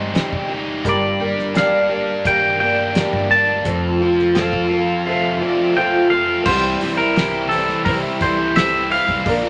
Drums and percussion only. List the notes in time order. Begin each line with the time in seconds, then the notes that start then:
0.15 snare, closed hi-hat
0.32 kick
0.85 kick, closed hi-hat
1.39 snare
1.55 snare, closed hi-hat
2.25 kick, closed hi-hat
2.95 snare, closed hi-hat
3.13 kick
3.65 kick, closed hi-hat
4.19 snare
4.35 snare, closed hi-hat
4.53 kick
6.46 kick, crash
6.81 open hi-hat
7.16 snare, open hi-hat
7.51 open hi-hat
7.70 snare
7.85 kick, open hi-hat
8.21 kick, open hi-hat
8.56 snare, open hi-hat
8.91 open hi-hat
9.08 kick
9.26 kick, open hi-hat